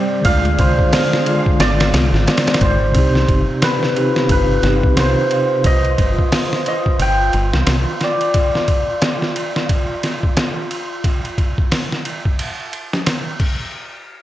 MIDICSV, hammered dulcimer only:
0, 0, Header, 1, 2, 480
1, 0, Start_track
1, 0, Key_signature, -3, "minor"
1, 0, Tempo, 674157
1, 175, Time_signature, 4, 2, 24, 8
1, 10125, End_track
2, 0, Start_track
2, 0, Title_t, "Hammered dulcimer"
2, 0, Program_c, 0, 15
2, 0, Note_on_c, 0, 74, 98
2, 178, Note_on_c, 0, 77, 110
2, 422, Note_on_c, 0, 72, 78
2, 1139, Note_off_c, 0, 74, 0
2, 1142, Note_on_c, 0, 74, 122
2, 1758, Note_off_c, 0, 77, 0
2, 1861, Note_off_c, 0, 72, 0
2, 1864, Note_on_c, 0, 72, 85
2, 2586, Note_on_c, 0, 71, 82
2, 2629, Note_off_c, 0, 72, 0
2, 2895, Note_off_c, 0, 74, 0
2, 3069, Note_off_c, 0, 71, 0
2, 3072, Note_on_c, 0, 71, 87
2, 3551, Note_on_c, 0, 72, 89
2, 3594, Note_off_c, 0, 71, 0
2, 4030, Note_on_c, 0, 75, 107
2, 4752, Note_off_c, 0, 75, 0
2, 4755, Note_on_c, 0, 75, 92
2, 4817, Note_off_c, 0, 75, 0
2, 4997, Note_on_c, 0, 79, 102
2, 5430, Note_off_c, 0, 72, 0
2, 5721, Note_on_c, 0, 74, 76
2, 6472, Note_off_c, 0, 79, 0
2, 7475, Note_off_c, 0, 74, 0
2, 10125, End_track
0, 0, End_of_file